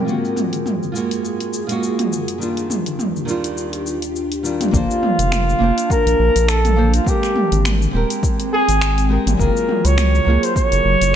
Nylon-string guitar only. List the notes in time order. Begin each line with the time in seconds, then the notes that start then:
0.05 G#3 A#3 F4
0.10 F#4
0.92 G#3 A#3 F4
0.97 F#4
1.67 G#3 A#3 F4
1.72 F#4
2.38 D#3 G3 D4
2.43 F4
3.25 D#3 G3 D4
3.30 F4
4.43 D#3 G3 D4 F4
4.71 A#3 D4 A4
4.76 C5
5.59 A#3 D4 A5
5.63 C5
6.76 A#3 D4 A4 C5
7.04 G#3 C4 G4
7.09 A#4
7.91 G#3 C4 G4
7.96 A#4
9.09 G#3 C4 G4 A#4
9.37 F#3 A#3 F4
9.42 G#4
10.25 F#3 A#3 F4
10.30 G#4